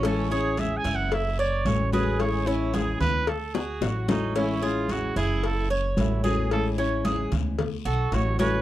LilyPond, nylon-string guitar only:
\new Staff \with { instrumentName = "Nylon-string guitar" } { \time 4/4 \key fis \minor \tempo 4 = 111 <e gis cis' e'>8 <gis cis' e'>8 <e gis cis' e'>4 r4 <e a cis' fis'>8 <e a cis' fis'>8 | <e gis cis' e'>8 <gis cis' e'>8 <e gis cis' e'>4 r4 <fis a e' fis'>8 <fis a e' fis'>8 | <e gis cis' e'>8 <gis cis' e'>8 <e gis cis' e'>4 r4 <e a cis' fis'>8 <e a cis' fis'>8 | <e gis cis' e'>8 <gis cis' e'>8 <e gis cis' e'>4 r4 <fis a e' fis'>8 <fis a e' fis'>8 | }